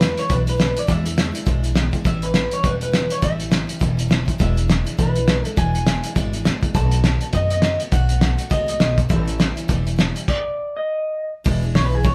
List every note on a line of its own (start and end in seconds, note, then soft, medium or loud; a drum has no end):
0.00 0.12 E2 medium
0.00 0.17 E3 medium
0.00 0.17 G#3 medium
0.00 0.17 D4 medium
0.00 0.16 E4 medium
0.00 0.19 B4 medium
0.00 snare loud
0.00 closed hi-hat medium
0.17 0.29 E3 soft
0.17 0.29 G#3 soft
0.17 0.30 D4 medium
0.17 0.29 E4 medium
0.17 0.31 C#5 medium
0.17 closed hi-hat medium
0.29 0.71 B1 medium
0.29 0.46 E2 medium
0.29 0.47 B2 medium
0.29 0.47 E3 medium
0.29 0.47 G#3 medium
0.29 0.46 D4 medium
0.29 0.45 E4 medium
0.29 0.37 B4 loud
0.29 kick loud
0.29 closed hi-hat medium
0.46 0.56 E3 soft
0.46 0.57 G#3 soft
0.46 0.58 D4 soft
0.46 0.59 E4 soft
0.46 0.78 B4 medium
0.46 closed hi-hat medium
0.57 0.75 E3 medium
0.57 0.76 G#3 medium
0.57 0.75 D4 medium
0.57 0.74 E4 medium
0.57 snare loud
0.57 closed hi-hat medium
0.75 0.87 E3 soft
0.75 0.87 G#3 soft
0.75 0.88 D4 soft
0.75 0.88 E4 medium
0.75 closed hi-hat medium
0.79 0.91 D5 medium
0.87 1.05 E2 medium
0.87 1.29 E2 medium
0.87 1.05 B2 medium
0.87 1.05 E3 medium
0.87 1.05 G#3 medium
0.87 1.04 D4 medium
0.87 1.02 E4 medium
0.87 kick loud
0.87 closed hi-hat medium
0.91 1.48 E5 medium
1.04 1.15 E3 soft
1.04 1.16 G#3 soft
1.04 1.17 D4 medium
1.04 1.17 E4 soft
1.04 closed hi-hat medium
1.16 1.34 E3 medium
1.16 1.33 G#3 medium
1.16 1.32 D4 medium
1.16 1.31 E4 medium
1.16 snare loud
1.16 closed hi-hat medium
1.32 1.45 E3 soft
1.32 1.45 G#3 soft
1.32 1.46 D4 medium
1.32 1.46 E4 medium
1.32 closed hi-hat medium
1.45 1.88 B1 medium
1.45 1.63 E2 medium
1.45 1.63 B2 medium
1.45 1.64 E3 medium
1.45 1.64 G#3 medium
1.45 1.63 D4 medium
1.45 1.61 E4 loud
1.45 kick loud
1.45 closed hi-hat medium
1.63 1.73 E3 soft
1.63 1.74 G#3 soft
1.63 1.75 D4 medium
1.63 1.75 E4 medium
1.63 closed hi-hat medium
1.74 1.92 E3 medium
1.74 1.92 G#3 medium
1.74 1.92 D4 medium
1.74 1.90 E4 medium
1.74 snare loud
1.74 closed hi-hat medium
1.91 2.04 E3 soft
1.91 2.05 G#3 soft
1.91 2.05 D4 medium
1.91 2.04 E4 medium
1.91 kick medium
1.91 closed hi-hat medium
2.04 2.46 A1 medium
2.04 2.22 A2 medium
2.04 2.23 E3 medium
2.04 2.23 G3 medium
2.04 2.22 C#4 loud
2.04 2.21 E4 medium
2.04 2.24 E5 loud
2.04 kick loud
2.04 closed hi-hat medium
2.22 2.34 G3 soft
2.22 2.35 C#4 soft
2.22 2.34 E4 soft
2.22 2.53 B4 medium
2.22 closed hi-hat medium
2.34 2.51 E3 medium
2.34 2.52 G3 medium
2.34 2.52 C#4 medium
2.34 2.50 E4 medium
2.34 snare loud
2.34 closed hi-hat medium
2.51 2.63 G3 soft
2.51 2.64 C#4 medium
2.51 2.64 E4 medium
2.51 2.65 C#5 loud
2.51 closed hi-hat medium
2.63 3.05 E1 medium
2.63 2.81 A2 medium
2.63 2.81 E3 medium
2.63 2.81 G3 medium
2.63 2.82 C#4 medium
2.63 2.80 E4 medium
2.63 2.71 B4 medium
2.63 kick loud
2.63 closed hi-hat medium
2.81 2.92 G3 soft
2.81 2.93 C#4 soft
2.81 2.93 E4 medium
2.81 3.12 B4 medium
2.81 closed hi-hat medium
2.92 3.10 E3 medium
2.92 3.10 G3 medium
2.92 3.10 C#4 medium
2.92 3.08 E4 medium
2.92 snare loud
2.92 closed hi-hat medium
3.09 3.22 G3 soft
3.09 3.22 C#4 soft
3.09 3.22 E4 soft
3.09 3.23 C#5 medium
3.09 closed hi-hat medium
3.22 3.64 A1 medium
3.22 3.39 A2 medium
3.22 3.40 E3 medium
3.22 3.40 G3 medium
3.22 3.38 C#4 medium
3.22 3.37 E4 medium
3.22 3.78 E5 medium
3.22 kick loud
3.22 closed hi-hat medium
3.38 3.49 G3 soft
3.38 3.50 C#4 medium
3.38 3.51 E4 soft
3.38 closed hi-hat medium
3.49 3.68 E3 medium
3.49 3.68 G3 medium
3.49 3.68 C#4 medium
3.49 3.66 E4 medium
3.49 snare loud
3.49 closed hi-hat medium
3.67 3.79 G3 soft
3.67 3.80 C#4 medium
3.67 3.80 E4 medium
3.67 closed hi-hat medium
3.79 4.22 E1 medium
3.79 3.97 A2 medium
3.79 3.98 E3 medium
3.79 3.98 G3 medium
3.79 3.97 C#4 medium
3.79 3.96 E4 medium
3.79 kick medium
3.79 closed hi-hat medium
3.97 4.08 G3 medium
3.97 4.09 C#4 medium
3.97 4.10 E4 medium
3.97 closed hi-hat medium
4.08 4.26 E3 medium
4.08 4.27 G3 medium
4.08 4.26 C#4 medium
4.08 4.24 E4 medium
4.08 snare loud
4.08 closed hi-hat medium
4.25 4.39 G3 soft
4.25 4.39 C#4 soft
4.25 4.39 E4 medium
4.25 kick medium
4.25 closed hi-hat medium
4.38 4.81 E1 loud
4.38 4.56 E2 medium
4.38 4.57 B2 medium
4.38 4.57 E3 medium
4.38 4.56 G#3 loud
4.38 4.55 D4 medium
4.38 4.54 E4 loud
4.38 5.01 E5 medium
4.38 kick loud
4.38 closed hi-hat medium
4.55 4.67 E3 soft
4.55 4.67 G#3 soft
4.55 4.68 D4 medium
4.55 4.68 E4 medium
4.55 closed hi-hat medium
4.68 4.86 E3 medium
4.68 4.86 G#3 medium
4.68 4.84 D4 medium
4.68 4.83 E4 medium
4.68 snare loud
4.68 closed hi-hat medium
4.85 4.97 E3 soft
4.85 4.97 G#3 medium
4.85 4.98 D4 medium
4.85 4.98 E4 medium
4.85 closed hi-hat medium
4.97 5.40 B1 medium
4.97 5.15 E2 medium
4.97 5.15 B2 medium
4.97 5.16 E3 medium
4.97 5.16 G#3 medium
4.97 5.15 D4 medium
4.97 5.13 E4 medium
4.97 5.46 B4 medium
4.97 kick loud
4.97 closed hi-hat medium
5.15 5.26 E3 soft
5.15 5.27 G#3 soft
5.15 5.27 D4 medium
5.15 5.27 E4 medium
5.15 closed hi-hat medium
5.27 5.45 E3 medium
5.27 5.45 G#3 medium
5.27 5.44 D4 medium
5.27 5.43 E4 medium
5.27 snare loud
5.27 closed hi-hat medium
5.44 5.56 E3 medium
5.44 5.56 G#3 soft
5.44 5.57 D4 medium
5.44 5.57 E4 medium
5.44 5.59 A4 medium
5.44 closed hi-hat medium
5.56 5.98 E1 medium
5.56 5.74 E2 medium
5.56 5.74 B2 medium
5.56 5.75 E3 medium
5.56 5.74 G#3 medium
5.56 5.73 D4 medium
5.56 5.72 E4 loud
5.56 6.12 G#5 medium
5.56 kick loud
5.56 closed hi-hat medium
5.73 5.85 E3 soft
5.73 5.86 G#3 soft
5.73 5.87 D4 soft
5.73 5.86 E4 medium
5.73 closed hi-hat medium
5.86 6.03 E3 medium
5.86 6.04 G#3 medium
5.86 6.03 D4 medium
5.86 6.02 E4 medium
5.86 snare loud
5.86 closed hi-hat loud
6.03 6.16 E3 soft
6.03 6.15 G#3 medium
6.03 6.16 D4 medium
6.03 6.15 E4 medium
6.03 closed hi-hat medium
6.15 6.41 G#1 medium
6.15 6.33 E2 medium
6.15 6.33 B2 medium
6.15 6.34 E3 medium
6.15 6.34 G#3 medium
6.15 6.32 D4 medium
6.15 6.31 E4 loud
6.15 kick loud
6.15 closed hi-hat medium
6.33 6.43 E3 soft
6.33 6.44 G#3 soft
6.33 6.45 D4 medium
6.33 6.45 E4 medium
6.33 closed hi-hat medium
6.44 6.71 A1 medium
6.44 6.62 E3 medium
6.44 6.62 G#3 medium
6.44 6.61 D4 medium
6.44 6.60 E4 medium
6.44 snare loud
6.44 closed hi-hat medium
6.61 6.75 E3 soft
6.61 6.75 G#3 medium
6.61 6.75 D4 soft
6.61 6.74 E4 medium
6.61 kick medium
6.61 closed hi-hat medium
6.74 7.16 B1 medium
6.74 6.92 B2 medium
6.74 6.92 D#3 medium
6.74 6.92 A3 medium
6.74 6.92 B3 medium
6.74 6.90 F#4 medium
6.74 7.34 A5 medium
6.74 kick loud
6.74 closed hi-hat medium
6.91 7.03 A3 soft
6.91 7.05 B3 medium
6.91 7.04 F#4 medium
6.91 closed hi-hat medium
7.03 7.21 D#3 medium
7.03 7.22 A3 medium
7.03 7.21 B3 medium
7.03 7.19 F#4 medium
7.03 snare loud
7.03 closed hi-hat medium
7.21 7.33 A3 soft
7.21 7.34 B3 medium
7.21 7.33 F#4 medium
7.21 closed hi-hat medium
7.33 7.75 F#2 medium
7.33 7.51 B2 medium
7.33 7.51 D#3 medium
7.33 7.51 A3 medium
7.33 7.51 B3 medium
7.33 7.50 F#4 medium
7.33 7.50 D#5 loud
7.33 kick medium
7.33 closed hi-hat medium
7.50 7.62 A3 soft
7.50 7.64 B3 medium
7.50 7.63 F#4 medium
7.50 7.79 D#5 medium
7.50 closed hi-hat medium
7.62 7.80 D#3 medium
7.62 7.81 A3 medium
7.62 7.81 B3 medium
7.62 7.79 F#4 medium
7.62 snare loud
7.62 closed hi-hat medium
7.80 7.93 A3 soft
7.80 7.93 B3 soft
7.80 7.92 F#4 medium
7.80 closed hi-hat medium
7.92 8.34 B1 loud
7.92 8.10 B2 medium
7.92 8.10 D#3 medium
7.92 8.10 A3 medium
7.92 8.09 B3 loud
7.92 8.07 F#4 loud
7.92 8.51 F#5 medium
7.92 kick loud
7.92 closed hi-hat medium
8.08 8.21 A3 soft
8.08 8.22 B3 soft
8.08 8.21 F#4 medium
8.08 closed hi-hat medium
8.21 8.39 D#3 medium
8.21 8.39 A3 medium
8.21 8.38 B3 medium
8.21 8.36 F#4 medium
8.21 snare loud
8.21 closed hi-hat medium
8.37 8.49 A3 medium
8.37 8.50 B3 medium
8.37 8.50 F#4 medium
8.37 closed hi-hat medium
8.50 8.76 C#2 medium
8.50 8.68 B2 medium
8.50 8.68 D#3 medium
8.50 8.68 A3 medium
8.50 8.67 B3 medium
8.50 8.65 F#4 loud
8.50 8.68 D#5 medium
8.50 kick loud
8.50 closed hi-hat medium
8.66 8.79 A3 soft
8.66 8.81 B3 medium
8.66 8.80 F#4 medium
8.66 8.96 D#5 medium
8.66 closed hi-hat medium
8.80 9.06 B1 medium
8.80 8.98 D#3 medium
8.80 8.98 A3 medium
8.80 8.97 B3 medium
8.80 8.96 F#4 medium
8.80 snare loud
8.80 closed hi-hat medium
8.97 9.10 A3 soft
8.97 9.10 B3 soft
8.97 9.10 F#4 soft
8.97 kick medium
8.97 closed hi-hat medium
9.09 9.51 A1 loud
9.09 9.27 A2 medium
9.09 9.27 E3 medium
9.09 9.27 G3 medium
9.09 9.26 C#4 loud
9.09 9.24 E4 medium
9.09 10.24 E5 medium
9.09 kick loud
9.09 closed hi-hat medium
9.26 9.39 G3 soft
9.26 9.40 C#4 medium
9.26 9.39 E4 medium
9.26 closed hi-hat medium
9.38 9.56 E3 medium
9.38 9.57 G3 medium
9.38 9.56 C#4 medium
9.38 9.55 E4 medium
9.38 snare loud
9.38 closed hi-hat medium
9.56 9.68 G3 medium
9.56 9.68 C#4 medium
9.56 9.69 E4 medium
9.56 closed hi-hat medium
9.68 10.10 E1 medium
9.68 9.86 A2 medium
9.68 9.86 E3 medium
9.68 9.86 G3 loud
9.68 9.86 C#4 medium
9.68 9.84 E4 medium
9.68 kick medium
9.68 closed hi-hat medium
9.86 9.97 G3 soft
9.86 9.98 C#4 medium
9.86 9.98 E4 medium
9.86 closed hi-hat medium
9.96 10.15 E3 medium
9.96 10.16 G3 medium
9.96 10.15 C#4 medium
9.96 10.14 E4 medium
9.96 snare loud
9.96 closed hi-hat medium
10.15 10.29 G3 medium
10.15 10.28 C#4 soft
10.15 10.28 E4 medium
10.15 closed hi-hat medium
10.28 10.76 D5 medium
10.28 kick loud
10.28 crash medium
10.77 11.31 D#5 medium
11.44 11.74 E1 medium
11.44 11.62 E2 medium
11.44 11.62 B2 loud
11.44 11.63 E3 loud
11.44 11.63 G#3 loud
11.44 11.62 D4 loud
11.44 11.60 E4 loud
11.44 kick loud
11.44 open hi-hat medium
11.62 11.73 E3 soft
11.62 11.74 G#3 medium
11.62 11.75 D4 medium
11.62 11.75 E4 medium
11.75 12.04 B1 medium
11.75 11.92 E3 medium
11.75 11.91 G#3 medium
11.75 11.90 D4 medium
11.75 11.89 E4 medium
11.75 11.85 C#5 medium
11.75 snare loud
11.75 open hi-hat medium
11.85 11.95 B4 medium
11.90 12.03 E3 soft
11.90 12.04 G#3 soft
11.90 12.04 D4 medium
11.90 12.04 E4 medium
11.95 12.04 G#4 medium
12.03 12.15 G#1 medium
12.03 12.15 E2 medium
12.03 12.15 B2 medium
12.03 12.15 E3 medium
12.03 12.15 G#3 medium
12.03 12.15 D4 medium
12.03 12.15 E4 medium
12.03 12.15 C#5 medium
12.03 kick loud
12.03 open hi-hat soft